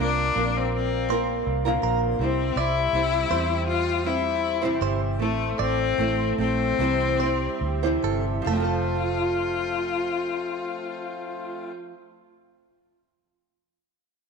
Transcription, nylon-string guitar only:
0.00 0.34 A#3 medium
0.00 0.35 C4 medium
0.00 0.36 F4 medium
0.00 0.37 A#4 medium
0.35 1.08 A#3 medium
0.35 1.10 C4 medium
0.35 1.10 F4 medium
0.35 1.10 A#4 medium
1.09 1.64 A#3 medium
1.09 1.65 C4 medium
1.09 1.65 F4 medium
1.09 1.64 A#4 medium
1.65 2.21 A#2 medium
1.65 2.21 D3 medium
1.65 2.18 A#3 medium
1.65 2.19 C4 medium
1.65 2.20 F4 medium
1.65 2.20 A#4 medium
2.19 2.92 G3 medium
2.19 2.93 C4 medium
2.19 2.95 E4 medium
2.19 2.95 C5 medium
2.93 3.28 G3 medium
2.93 3.29 C4 medium
2.93 3.31 E4 medium
2.93 3.31 C5 medium
3.30 4.03 G3 medium
3.30 4.05 C4 medium
3.30 4.07 C5 medium
4.04 4.62 G3 medium
4.04 4.61 C4 medium
4.04 4.61 E4 medium
4.04 4.60 C5 medium
4.62 5.21 C3 medium
4.62 5.21 E3 medium
4.62 5.19 G3 medium
4.62 5.19 C4 medium
4.62 5.20 E4 medium
4.62 5.20 C5 medium
5.19 5.97 A3 medium
5.19 5.99 C4 medium
5.19 5.99 E4 medium
5.19 6.00 A4 medium
5.98 6.37 A3 medium
5.98 6.38 C4 medium
5.98 6.39 E4 medium
5.98 6.40 A4 medium
6.38 6.79 A3 medium
6.38 6.80 C4 medium
6.38 6.80 E4 medium
6.38 6.80 A4 medium
6.79 7.20 C3 medium
6.79 7.20 E3 medium
6.79 7.20 G3 medium
6.79 7.21 C4 medium
6.79 7.21 E4 medium
6.79 7.21 C5 medium
7.21 7.83 G3 medium
7.21 7.82 C4 medium
7.21 7.82 E4 medium
7.21 7.82 C5 medium
7.83 8.48 C3 medium
7.83 8.41 E3 medium
7.83 8.48 G3 medium
7.83 8.48 C4 medium
7.83 8.47 E4 medium
7.83 8.47 C5 medium
8.42 11.92 F3 medium
8.48 11.98 A3 medium
8.53 12.03 C4 medium
8.57 12.07 F4 medium
8.62 12.12 A4 medium

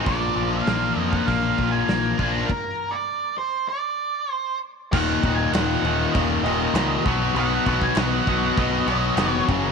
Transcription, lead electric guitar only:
0.06 0.53 D5 medium
0.51 1.10 F5 medium
1.10 1.25 F#5 medium
1.25 1.71 F5 medium
1.71 2.35 G#5 loud
2.31 2.49 A#5 medium
2.45 2.94 A#4 medium
2.91 3.38 D5 medium
3.38 3.68 C5 medium
3.69 4.32 D5 medium
4.32 4.57 C5 medium
4.93 5.35 F#5 loud
5.35 5.51 G#5 loud
5.51 6.15 F#5 medium
6.12 6.20 D#5 medium
6.44 7.01 D#5 medium
7.39 7.82 F#5 loud
7.83 7.98 G#5 loud
7.98 8.60 F#5 loud
8.59 8.86 D#5 medium
8.88 9.31 D#5 loud
9.31 9.44 C#5 loud

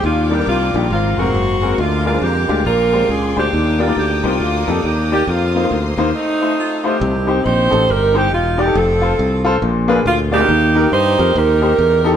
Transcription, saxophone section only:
0.05 0.49 A#3 medium
0.05 0.49 D4 medium
0.05 0.30 F4 medium
0.33 0.49 G4 medium
0.49 0.90 A#3 medium
0.49 0.90 D4 medium
0.49 0.89 F4 medium
0.92 1.18 A#3 medium
0.92 1.18 C4 medium
0.92 1.17 F4 medium
1.19 1.75 A#3 medium
1.19 1.75 C4 medium
1.19 1.79 F#4 medium
1.80 2.63 G#3 medium
1.80 2.22 A#3 medium
1.80 2.05 F4 medium
2.06 2.22 F4 loud
2.22 2.64 A#3 medium
2.22 2.66 G4 loud
2.66 3.37 D4 medium
2.66 3.49 F4 medium
2.66 3.10 A#4 loud
3.10 3.37 G#4 medium
3.38 4.21 A#3 medium
3.38 4.21 D4 medium
3.38 3.79 G4 medium
3.82 3.98 F4 medium
3.98 4.23 G4 medium
4.25 5.08 A#3 medium
4.25 5.08 D4 medium
4.25 4.68 F4 medium
4.69 4.85 D#4 medium
4.85 5.11 G4 medium
5.12 5.27 G4 medium
5.29 6.12 A#3 medium
5.29 6.12 C4 medium
5.29 5.93 F4 medium
6.15 6.98 A3 medium
6.15 6.85 C4 medium
6.15 6.81 D#4 loud
6.58 6.84 F4 medium
6.86 7.69 C4 medium
6.86 7.45 D#4 medium
6.86 7.44 G4 medium
7.45 7.89 D#4 medium
7.45 7.89 G4 medium
7.45 7.89 C5 loud
7.90 8.72 D#4 medium
7.90 8.15 G4 medium
7.90 8.16 A#4 loud
8.16 8.32 G4 loud
8.33 8.58 F4 medium
8.60 8.76 G4 medium
8.76 9.58 C4 medium
8.76 9.59 F4 medium
8.76 9.46 A4 medium
10.06 10.18 F4 medium
10.33 11.15 A#3 medium
10.33 10.91 D#4 medium
10.33 10.88 G4 loud
10.92 11.35 D#4 medium
10.92 11.35 G4 medium
10.92 11.35 C5 loud
11.36 12.17 D#4 medium
11.36 12.17 G4 medium
11.36 12.17 A#4 loud

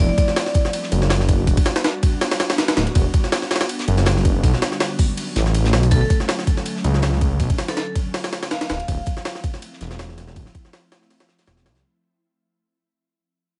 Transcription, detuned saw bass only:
0.92 1.46 F#1 loud
1.47 1.56 E1 loud
2.77 2.86 D1 medium
2.95 3.04 E1 loud
3.88 4.42 F#1 loud
4.43 4.52 B1 loud
5.36 5.74 A1 loud
5.73 5.90 B1 loud
5.92 6.01 B1 loud
6.84 7.38 C#2 loud
7.40 7.49 B1 loud
8.70 8.79 D1 loud
8.88 8.97 D1 loud
9.81 10.35 E1 loud
10.36 10.45 D1 loud
11.47 11.67 E1 loud
11.66 11.83 C2 medium

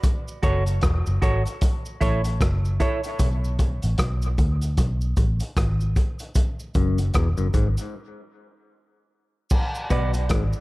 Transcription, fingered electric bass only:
0.44 0.81 F#1 loud
0.83 1.05 E1 medium
1.07 1.22 F#1 loud
1.23 1.45 G#1 medium
2.02 2.39 A1 loud
2.41 2.78 F#1 medium
3.20 3.79 B1 loud
3.84 3.98 A1 medium
3.99 4.36 B1 medium
4.39 4.76 D2 medium
4.78 5.15 B1 loud
5.17 5.39 A1 medium
5.57 5.94 G#1 medium
6.76 7.13 F#1 medium
7.15 7.37 E1 medium
7.39 7.54 F#1 medium
7.54 7.76 G#1 medium
9.91 10.28 B1 loud
10.31 10.52 G#1 loud

